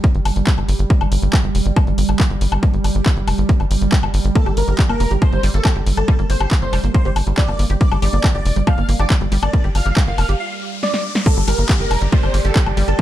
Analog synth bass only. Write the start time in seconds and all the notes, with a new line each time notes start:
0.15 G1
0.25 G1
0.36 G1
0.58 G1
0.69 G1
0.79 G1
1.01 G1
1.12 G1
1.22 G1
1.44 G1
1.55 F1
1.66 G1
1.87 G1
1.98 G1
2.09 G1
2.30 G1
2.41 G1
2.52 G1
2.74 G1
2.84 G1
2.95 G1
3.17 G1
3.27 F1
3.38 G1
3.60 G1
3.71 G1
3.81 G1
4.03 G1
4.14 G1
4.25 G1
4.46 G1
4.57 G1
4.68 G1
4.89 G1
5.00 F1
5.11 G1
5.33 G1
5.43 G1
5.54 G1
5.76 G1
5.87 G1
5.97 G1
6.19 G1
6.30 G1
6.40 G1
6.62 G1
6.73 F1
6.84 G1
7.05 G1
7.16 G1
7.27 G1
7.48 G1
7.59 G1
7.70 G1
7.92 G1
8.02 G1
8.13 G1
8.35 G1
8.46 F1
8.56 G1
8.78 G1
8.89 G1
8.99 G1
9.21 G1
9.32 G1
9.43 G1
9.64 G1
9.75 G1
9.86 G1
10.07 G1
10.18 F1
10.29 G1
11.37 G1
11.48 G1
11.58 G1
11.80 G1
11.91 F1
12.02 G1
12.23 G1
12.34 G1
12.45 G1
12.66 G1
12.77 G1
12.88 G1